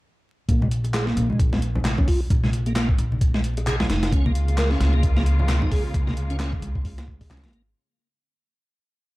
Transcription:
0.49 A#1 A#3, kick, closed hi-hat
0.62 G#3, high conga
0.71 closed hi-hat
0.84 closed hi-hat, high bongo
0.94 G#4, snare, clap, closed hi-hat
1.07 A#3, snare
1.17 A#1, closed hi-hat
1.30 G#3, high conga
1.40 kick, closed hi-hat
1.53 G#3, snare, low conga
1.62 closed hi-hat
1.75 low conga
1.85 snare, clap, closed hi-hat, high conga
1.98 C#4, kick, low conga
2.08 F4, kick, open hi-hat
2.30 A#1, kick, closed hi-hat
2.44 G#3, snare, high conga
2.53 closed hi-hat
2.66 A#3, closed hi-hat, high bongo
2.76 A#3, snare, clap, closed hi-hat
2.89 kick
2.98 A#1, closed hi-hat
3.12 high conga
3.21 kick, closed hi-hat
3.34 G#3, snare
3.44 closed hi-hat
3.57 closed hi-hat, high bongo
3.67 G#4, clap, closed hi-hat, high conga
3.80 G#3, snare, low conga
3.90 F1 D#4, snare, closed hi-hat
4.03 snare, closed hi-hat
4.12 C#2 C#3 G#3 A#3 C#4 F4, kick, closed hi-hat
4.26 A#3, high conga
4.35 closed hi-hat
4.48 closed hi-hat, high bongo
4.58 A#4, snare, clap, closed hi-hat
4.71 C#4, snare
4.81 C#2, snare, closed hi-hat
4.93 A#3, high conga
5.03 kick, closed hi-hat
5.16 A#3, snare, low conga
5.26 closed hi-hat
5.39 low conga
5.49 snare, clap, closed hi-hat, high conga
5.62 D#4, kick, low conga
5.71 G#4, kick, open hi-hat
5.94 C#2, kick, closed hi-hat
6.07 A#3, snare, high conga
6.17 closed hi-hat
6.30 C#4, closed hi-hat, high bongo
6.40 C#4, snare, clap, closed hi-hat
6.53 kick
6.62 C#2, closed hi-hat
6.75 kick, high conga
6.85 kick, open hi-hat
6.98 A#3, snare, closed hi-hat
7.08 kick
7.21 kick, open hi-hat, high bongo
7.30 C#4, snare, clap, closed hi-hat, high conga
7.37 snare, closed hi-hat
7.43 A#3, snare, closed hi-hat, low conga
7.48 snare, closed hi-hat
7.53 G#1 A#3, closed hi-hat

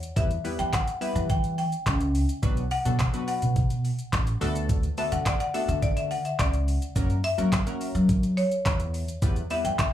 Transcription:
0.03 closed hi-hat, shaker
0.16 E2 G3 B3 E4 G4 B4 E5, kick, closed hi-hat, shaker
0.31 closed hi-hat, shaker
0.44 G3 B3 E4 G4 B4, open hi-hat, shaker
0.59 E3 G5, closed hi-hat, shaker
0.73 F#5, kick, snare, clap, closed hi-hat, shaker
0.88 closed hi-hat, shaker
1.01 G3 B3 E4 G4 B4 E5, open hi-hat, shaker
1.15 E3, closed hi-hat, shaker
1.30 G5, kick, closed hi-hat, shaker
1.44 closed hi-hat, shaker
1.58 G5, open hi-hat, shaker
1.72 closed hi-hat, shaker
1.86 C#2, kick, snare, clap, closed hi-hat, shaker
2.01 closed hi-hat, shaker
2.15 open hi-hat, shaker
2.29 closed hi-hat, shaker
2.42 B1 F#3 B3 D4 F#4 B4, kick, closed hi-hat, shaker
2.57 closed hi-hat, shaker
2.71 F#5, open hi-hat, shaker
2.85 B2 F#3 B3 D4 F#4 A4, closed hi-hat, shaker
2.99 kick, snare, clap, closed hi-hat, shaker
3.13 F#3 B3 D4 F#4 B4, closed hi-hat, shaker
3.28 F#5, open hi-hat, shaker
3.42 B2, closed hi-hat, shaker
3.56 kick, closed hi-hat, shaker
3.70 closed hi-hat, shaker
3.85 open hi-hat, shaker
3.99 closed hi-hat, shaker
4.13 A1, kick, snare, clap, closed hi-hat, shaker
4.27 closed hi-hat, shaker
4.41 D2 A3 B3 D4 F#4 A4, open hi-hat, shaker
4.56 closed hi-hat, shaker
4.69 kick, closed hi-hat, shaker
4.83 closed hi-hat, shaker
4.98 A3 B3 D4 F#4 A4 E5, open hi-hat, shaker
5.12 D3 F#5, closed hi-hat, shaker
5.26 D5, kick, snare, clap, closed hi-hat, shaker
5.40 F#5, closed hi-hat, shaker
5.54 A3 B3 D4 F#4 A4 E5, open hi-hat, shaker
5.68 D3 E5, closed hi-hat, shaker
5.82 D5, kick, closed hi-hat, shaker
5.97 E5, closed hi-hat, shaker
6.11 F#5, open hi-hat, shaker
6.25 E5, closed hi-hat, shaker
6.39 C#2 D5, kick, snare, clap, closed hi-hat, shaker
6.54 closed hi-hat, shaker
6.68 open hi-hat, shaker
6.82 closed hi-hat, shaker
6.96 F#2 F#3 A#3 C#4 F#4 A#4, kick, closed hi-hat, shaker
7.10 closed hi-hat, shaker
7.24 E5, open hi-hat, shaker
7.38 F#3 A#3 C#4 F#4 A#4, closed hi-hat, shaker
7.52 kick, snare, clap, closed hi-hat, shaker
7.66 F#3 A#3 C#4 F#4 A#4, closed hi-hat, shaker
7.81 open hi-hat, shaker
7.95 F#3, closed hi-hat, shaker
8.09 kick, closed hi-hat, shaker
8.23 closed hi-hat, shaker
8.37 C#5, open hi-hat, shaker
8.51 closed hi-hat, shaker
8.66 E2, kick, snare, clap, closed hi-hat, shaker
8.80 closed hi-hat, shaker
8.94 open hi-hat, shaker
9.08 closed hi-hat, shaker
9.22 E2 G3 B3 E4 G4 B4, kick, closed hi-hat, shaker
9.36 closed hi-hat, shaker
9.50 G3 B3 E4 G4 B4 E5, open hi-hat, shaker
9.64 E3 G5, closed hi-hat, shaker
9.79 E5, kick, snare, clap, closed hi-hat, shaker

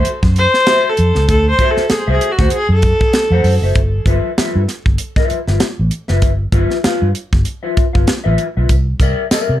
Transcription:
0.05 closed hi-hat
0.23 F#2, kick, snare
0.36 C5, closed hi-hat
0.54 snare
0.67 F#4 C5 E5, snare, closed hi-hat
0.89 A4
0.97 F2, closed hi-hat
1.15 C#2, snare
1.29 D2 A4, kick, closed hi-hat
1.50 C5
1.59 F#4 C5 E5, kick, closed hi-hat
1.70 A4
1.77 muted fingered electric bass stroke, snare
1.90 G#4, muted fingered electric bass stroke, snare, closed hi-hat
2.07 C2 F#4 C5 E5
2.12 G#4
2.21 closed hi-hat
2.32 F#4
2.38 D2 F#4 C5 F#5, kick, snare
2.50 G#4, closed hi-hat
2.69 F#2
2.74 A4
2.82 kick, closed hi-hat
3.01 kick
3.13 snare, closed hi-hat
3.30 F2 F#4 C5 F#5
3.44 F#2, open hi-hat
3.62 F#1 F#4 C5 E5
3.75 G1, kick, closed hi-hat
4.06 G1 F4 B4 E5, kick, closed hi-hat
4.38 F4 B4 E5, muted fingered electric bass stroke, snare, closed hi-hat
4.55 G2
4.68 snare, closed hi-hat
4.86 G1, kick
4.98 closed hi-hat
5.16 F4 B4 E5, kick, snare
5.30 muted fingered electric bass stroke, closed hi-hat
5.47 G1 F4 B4 E5, snare
5.60 snare, closed hi-hat
5.79 A1
5.91 closed hi-hat
6.08 F#1 F4 B4 E5, snare
6.22 G1, kick, closed hi-hat
6.52 G1 F4 B4 E5, kick, closed hi-hat
6.70 snare
6.83 F4 B4 F5, muted fingered electric bass stroke, snare, closed hi-hat
7.02 G2
7.15 closed hi-hat
7.33 G1, kick, snare
7.45 closed hi-hat
7.63 F4 B4 E5
7.77 muted fingered electric bass stroke, kick, closed hi-hat
7.93 G1 F4 B4 F5, kick
8.07 muted fingered electric bass stroke, snare, closed hi-hat
8.24 A1 F4 B4 E5
8.38 closed hi-hat
8.57 B1 F4 B4 E5
8.69 C2, kick, closed hi-hat, tambourine
9.00 C2 A#4 D5 E5, kick, closed hi-hat, tambourine
9.31 A#4 D5 E5, muted fingered electric bass stroke, snare, closed hi-hat, tambourine
9.49 C3

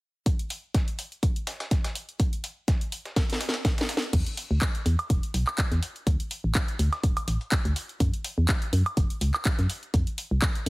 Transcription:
0.26 kick, closed hi-hat
0.39 closed hi-hat
0.50 closed hi-hat, open hi-hat
0.74 kick, snare, closed hi-hat
0.88 closed hi-hat
0.99 closed hi-hat, open hi-hat
1.12 closed hi-hat
1.23 kick, closed hi-hat
1.36 closed hi-hat
1.47 snare, closed hi-hat, open hi-hat
1.60 snare, closed hi-hat
1.71 kick, snare, closed hi-hat
1.84 snare, closed hi-hat
1.95 closed hi-hat, open hi-hat
2.09 closed hi-hat
2.20 kick, closed hi-hat
2.33 closed hi-hat
2.44 closed hi-hat, open hi-hat
2.68 kick, snare, closed hi-hat
2.81 closed hi-hat
2.92 closed hi-hat, open hi-hat
3.05 snare, closed hi-hat
3.16 kick, snare, closed hi-hat
3.30 snare, closed hi-hat
3.41 snare, closed hi-hat, open hi-hat
3.49 snare
3.54 snare, closed hi-hat
3.65 kick, snare, closed hi-hat
3.78 snare, closed hi-hat
3.81 snare
3.89 snare, closed hi-hat, open hi-hat
3.97 snare
4.02 closed hi-hat
4.13 E2, kick, closed hi-hat, crash
4.26 closed hi-hat
4.37 closed hi-hat, open hi-hat
4.51 D2
4.62 kick, snare, clap, closed hi-hat
4.75 closed hi-hat
4.86 E2, closed hi-hat, open hi-hat
4.99 closed hi-hat, high woodblock
5.10 E1, kick, closed hi-hat
5.23 closed hi-hat
5.34 B1, closed hi-hat, open hi-hat
5.47 clap, high woodblock
5.58 kick, snare, clap, closed hi-hat
5.72 E2, snare, closed hi-hat
5.83 closed hi-hat, open hi-hat
5.96 closed hi-hat
6.07 D2, kick, closed hi-hat
6.20 closed hi-hat
6.31 closed hi-hat, open hi-hat
6.44 A1
6.55 kick, snare, clap, closed hi-hat
6.68 closed hi-hat
6.79 D2, closed hi-hat, open hi-hat
6.93 snare, closed hi-hat, high woodblock
7.03 D1, kick, closed hi-hat
7.17 closed hi-hat, high woodblock
7.28 A1, closed hi-hat, open hi-hat
7.41 closed hi-hat
7.52 kick, snare, clap, closed hi-hat
7.65 D2, closed hi-hat
7.76 closed hi-hat, open hi-hat
7.89 closed hi-hat
8.00 F#2, kick, closed hi-hat
8.14 closed hi-hat
8.24 closed hi-hat, open hi-hat
8.38 E2
8.49 kick, snare, clap, closed hi-hat
8.62 closed hi-hat
8.73 F#2, closed hi-hat, open hi-hat
8.86 closed hi-hat, high woodblock
8.97 F#1, kick, closed hi-hat
9.10 closed hi-hat
9.21 C#2, closed hi-hat, open hi-hat
9.34 clap, high woodblock
9.45 kick, snare, clap, closed hi-hat
9.59 F#2, snare, closed hi-hat
9.70 closed hi-hat, open hi-hat
9.83 closed hi-hat
9.94 F2, kick, closed hi-hat
10.07 closed hi-hat
10.18 closed hi-hat, open hi-hat
10.31 C2
10.42 kick, snare, clap, closed hi-hat
10.55 closed hi-hat

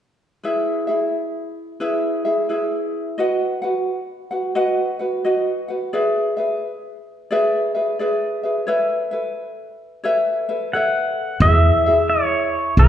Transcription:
0.43 E4 G#4 B4 E5
0.87 E4 G#4 E5
1.80 E4 G#4 B4 E5
2.25 E4 G#4 E5
2.49 E4 G#4 B4 E5
3.18 F#4 B4 D#5 F#5
3.62 F#4 B4 F#5
4.31 F#4 B4 F#5
4.55 F#4 B4 D#5 F#5
4.99 F#4 B4 F#5
5.25 F#4 B4 D#5 F#5
5.68 F#4 B4 F#5
5.93 G#4 B4 D5 E5
6.37 G#4 B4 E5
7.31 G#4 B4 D5 E5
7.75 G#4 B4 E5
7.99 G#4 B4 D5 E5
8.43 G#4 B4 E5
8.67 A4 B4 C#5 E5
9.11 A4 B4 E5
10.04 A4 B4 C#5 E5
10.49 A4 B4 E5
10.73 A4 B4 C#5 E5 F#5
11.40 E2 E4 G#4 B4 E5
11.86 E4 G#4 E5
12.10 C#5
12.77 B1 E4 G#4 B4 E5

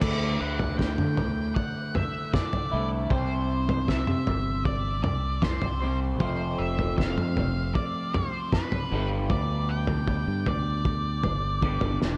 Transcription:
0.00 D2 A2 D3 A3 E4 D5, kick, floor tom, crash
0.41 D2 F#5
0.59 floor tom
0.78 D2 G5, kick, snare
0.98 D3, mid tom
1.17 D2, floor tom
1.55 F#5, kick
1.95 E5, floor tom, mid tom
2.33 D5, kick, snare, mid tom
2.53 floor tom
2.71 C2 D2 A2 D3 A3 E4
3.09 C2 C3 G3 C4 G4 C5, kick, floor tom
3.69 floor tom
3.88 E5, kick, snare
4.07 C3, mid tom
4.27 G1, floor tom
4.65 D5, kick
5.04 C2 D5, floor tom, mid tom
5.42 C5, kick, snare, mid tom
5.62 C2, floor tom
5.81 G3 C4 G4 C5
5.85 C3
6.19 F1 F2 C3 F3 A3 C4 F4 C5, kick, floor tom
6.58 F1 E5
6.79 floor tom
6.98 F1 F5, kick, snare
7.17 F2, mid tom
7.36 F1, floor tom
7.75 D5, kick
8.14 C5, floor tom, mid tom
8.52 B4, kick, snare, mid tom
8.72 floor tom
8.90 G1 G2 D3 G3 B3 D4
8.94 G4
9.30 D2 D5, kick, floor tom
9.69 G5
9.87 floor tom
10.08 kick
10.27 G2
10.46 D2 D5, floor tom
10.85 kick
11.24 G1, floor tom
11.61 G2 D3 G3 B3 D4, kick
11.65 G4
11.81 G1, floor tom
12.02 E1, snare

